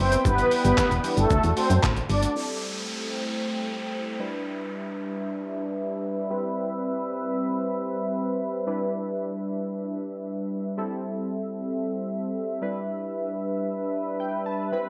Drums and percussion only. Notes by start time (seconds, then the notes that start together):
0.12 closed hi-hat, shaker
0.25 kick, shaker
0.38 closed hi-hat, shaker
0.51 open hi-hat, shaker
0.65 closed hi-hat, shaker
0.77 kick, snare, clap, shaker
0.91 closed hi-hat, shaker
1.04 open hi-hat, shaker
1.17 closed hi-hat, shaker
1.30 kick, shaker
1.43 closed hi-hat, shaker
1.57 open hi-hat, shaker
1.70 closed hi-hat, shaker
1.83 kick, snare, clap, shaker
1.96 closed hi-hat, shaker
2.10 open hi-hat, shaker
2.23 closed hi-hat, shaker